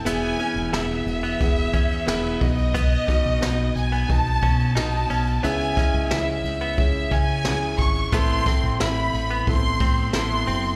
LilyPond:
<<
  \new Staff \with { instrumentName = "Violin section" } { \time 4/4 \key e \major \tempo 4 = 89 gis''4 e''2~ e''8 dis''8~ | dis''4. gis''8 a''4 a''4 | gis''4 e''4. gis''4 cis'''8 | c'''4 b''4 c'''4 c'''4 | }
  \new Staff \with { instrumentName = "Grand piano" } { \time 4/4 \key e \major <b e' gis' e''>8 <b e' gis' e''>8 <b e' gis' fis''>4 <b e' gis' fis''>4 <b e' gis' b'>8 <b dis' fis' dis''>8~ | <b dis' fis' dis''>8 <b dis' fis' dis''>8 <b dis' fis' dis''>4 <b dis' fis' dis''>4 <b dis' fis' dis''>4 | <cis' e' gis' e''>8 <cis' e' gis' dis''>8 <cis' e' gis' fis''>4 <cis' e' gis' e''>4 <cis' e' gis' fis''>4 | <c' e' a' e''>8 <c' e' a' e''>8 <c' e' a' e''>4 <b c' e' a' e''>4 <b c' e' a'>4 | }
  \new Staff \with { instrumentName = "Grand piano" } { \clef bass \time 4/4 \key e \major e4. r2 b,8~ | b,4 r2. | cis4. r2 r8 | a,4. r2 r8 | }
  \new Staff \with { instrumentName = "Clean electric guitar" } { \time 4/4 \key e \major b8 cis'8 e'16 r8 b16 r8 cis'8. r8. | b8 cis'8 dis'16 r8 b16 r8 cis'8 dis'16 r16 cis'16 r16 | b8 cis'8 e'16 r8 b16 r8 cis'8. r8. | b8 c'8 e'16 r8 b16 r8 c'8 e'16 r16 c'16 r16 | }
  \new Staff \with { instrumentName = "Fingered electric bass" } { \clef bass \time 4/4 \key e \major e,,8 r16 e,,16 e,,8 e,,8 e,,8 e,8 e,,8 b,,8~ | b,,8 r16 b,,16 b,,8 b,,8 b,,8 b,8 b,,8 b,,8 | cis,8 r16 cis,16 cis,8 cis,8 cis,8 cis8 cis,8 gis,,8 | a,,8 r16 a,,16 a,,8 a,,8 a,,8 a,8 a,,8 fis,,8 | }
  \new DrumStaff \with { instrumentName = "Drums" } \drummode { \time 4/4 <hhp cymr>16 cymr16 cymr16 cymr16 <cymr sn>16 cymr16 cymr16 cymr16 <bd cymr>16 cymr16 <bd cymr>16 cymr16 <cymr sn>16 cymr16 <hho bd cymr>16 cymr16 | <hhp bd cymr>8 <bd cymr sn>16 cymr16 <cymr sn>8 cymr16 cymr16 <bd cymr>16 cymr16 <bd cymr>16 cymr16 <cymr sn>16 cymr16 <hho cymr>16 cymr16 | <hhp cymr>16 cymr16 <bd cymr sn>16 cymr16 <cymr sn>8 cymr16 cymr16 <bd cymr>8 <bd cymr>16 cymr16 <cymr sn>8 <hho bd cymr>16 cymr16 | <hhp bd cymr>8 <bd cymr sn>16 cymr16 <cymr sn>16 cymr16 cymr16 cymr16 <bd cymr>16 cymr16 <bd cymr>16 cymr16 <cymr sn>8 <hho cymr>16 cymr16 | }
>>